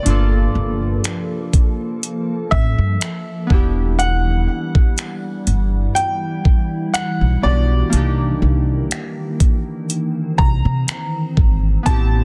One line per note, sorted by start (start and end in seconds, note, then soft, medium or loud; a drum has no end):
0.00 0.11 A3 soft
0.00 1.76 D5 medium
0.05 0.44 G1 loud
0.05 3.47 F3 medium
0.05 3.47 A#3 medium
0.05 3.46 D4 medium
0.05 3.47 F4 medium
0.05 3.47 A4 medium
0.05 closed hi-hat medium
0.09 3.48 A#3 medium
0.09 3.48 A4 medium
0.55 0.93 G1 medium
1.04 finger snap medium
1.04 closed hi-hat medium
1.53 kick medium
1.53 closed hi-hat medium
2.03 closed hi-hat medium
2.51 2.72 A1 medium
2.51 4.03 E5 loud
2.51 kick medium
2.78 2.96 G2 medium
3.01 finger snap loud
3.01 closed hi-hat medium
3.47 4.46 E1 medium
3.47 11.82 E3 medium
3.47 7.89 G3 medium
3.47 7.38 B3 medium
3.47 7.39 D4 medium
3.47 5.45 F#5 medium
3.47 kick medium
3.52 7.40 E4 medium
3.52 7.41 G4 medium
3.99 6.02 F#5 loud
3.99 closed hi-hat medium
4.75 kick medium
4.98 finger snap loud
4.98 closed hi-hat medium
5.47 5.85 G1 medium
5.47 7.90 E4 medium
5.47 closed hi-hat medium
5.95 6.97 G5 loud
5.95 closed hi-hat medium
6.45 kick medium
6.94 7.40 F#5 medium
6.94 finger snap loud
6.94 closed hi-hat medium
7.21 7.38 B1 medium
7.42 7.81 B1 medium
7.42 7.92 B3 soft
7.42 7.91 D4 soft
7.42 7.93 F#4 soft
7.42 7.94 G4 soft
7.42 8.38 D5 medium
7.90 8.30 C2 medium
7.90 11.82 D#3 medium
7.90 11.81 A#3 medium
7.90 9.88 A#3 medium
7.90 11.82 D4 medium
7.90 closed hi-hat medium
7.94 11.83 D#4 medium
7.94 11.84 G4 medium
8.42 8.80 C2 medium
8.91 finger snap loud
8.91 closed hi-hat medium
9.40 kick medium
9.40 closed hi-hat medium
9.90 11.84 C4 medium
9.90 closed hi-hat medium
10.38 10.59 C2 medium
10.38 11.90 A#5 loud
10.38 kick medium
10.65 10.83 C3 medium
10.88 finger snap loud
10.88 closed hi-hat medium
11.37 11.75 G#1 medium
11.37 kick medium
11.83 12.24 A1 medium
11.83 12.24 C3 medium
11.83 12.24 B3 medium
11.83 12.24 C4 medium
11.83 12.24 G4 medium
11.83 12.24 B4 medium
11.83 12.24 A5 loud
11.83 kick loud
11.83 closed hi-hat medium
11.88 12.24 E4 medium
11.88 12.24 G4 medium